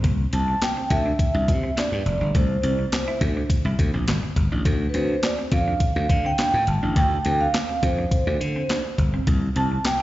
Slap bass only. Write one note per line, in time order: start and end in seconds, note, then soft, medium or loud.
0.04 0.25 C2 medium
0.33 0.54 C2 medium
0.90 1.11 D2 medium
1.34 1.50 C2 loud
1.48 1.69 C3 medium
1.92 2.02 G2 medium
2.06 2.17 F1 medium
2.21 2.31 G1 medium
2.35 2.56 C2 medium
2.63 2.84 C2 medium
3.21 3.42 D2 medium
3.65 3.75 C2 medium
3.79 3.90 D2 medium
3.94 4.04 A#1 medium
4.07 4.19 G1 medium
4.36 4.48 G1 medium
4.52 4.62 A1 medium
4.65 4.86 D2 loud
4.94 5.15 D2 medium
5.52 5.73 F2 medium
5.96 6.06 D2 loud
6.09 6.31 D3 medium
6.54 6.64 A2 medium
6.67 6.78 G1 medium
6.83 6.96 A1 medium
6.96 7.17 D2 loud
7.25 7.46 D2 medium
7.83 8.04 F2 medium
8.27 8.37 D2 medium
8.40 8.61 D3 medium
8.98 9.19 G1 medium
9.27 9.48 C2 loud
9.56 9.77 C2 medium